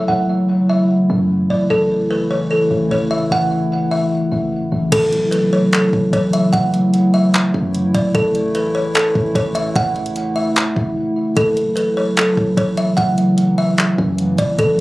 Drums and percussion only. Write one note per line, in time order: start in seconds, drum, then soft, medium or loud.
4.92 kick loud
4.92 closed hi-hat medium
4.92 crash medium
5.13 closed hi-hat medium
5.32 closed hi-hat medium
5.73 clap loud
5.73 closed hi-hat medium
5.93 kick medium
6.13 kick medium
6.13 closed hi-hat medium
6.33 closed hi-hat medium
6.53 kick loud
6.53 closed hi-hat medium
6.74 closed hi-hat medium
6.94 closed hi-hat medium
7.34 clap loud
7.34 closed hi-hat medium
7.54 kick medium
7.75 closed hi-hat medium
7.94 kick medium
7.94 closed hi-hat medium
8.15 kick loud
8.15 closed hi-hat medium
8.35 closed hi-hat medium
8.55 closed hi-hat medium
8.95 clap loud
8.95 closed hi-hat medium
9.15 kick medium
9.35 kick medium
9.35 closed hi-hat medium
9.55 closed hi-hat medium
9.76 kick loud
9.76 closed hi-hat medium
9.96 closed hi-hat soft
10.06 closed hi-hat medium
10.16 closed hi-hat medium
10.56 clap loud
10.56 closed hi-hat medium
10.76 kick medium
11.37 kick loud
11.37 closed hi-hat medium
11.57 closed hi-hat medium
11.77 closed hi-hat medium
12.17 clap loud
12.17 closed hi-hat medium
12.37 kick medium
12.57 kick medium
12.57 closed hi-hat medium
12.77 closed hi-hat medium
12.98 kick loud
12.98 closed hi-hat medium
13.18 closed hi-hat medium
13.38 closed hi-hat medium
13.78 clap loud
13.78 closed hi-hat medium
13.98 kick medium
14.18 closed hi-hat medium
14.38 kick medium
14.38 closed hi-hat medium
14.59 kick loud
14.59 closed hi-hat medium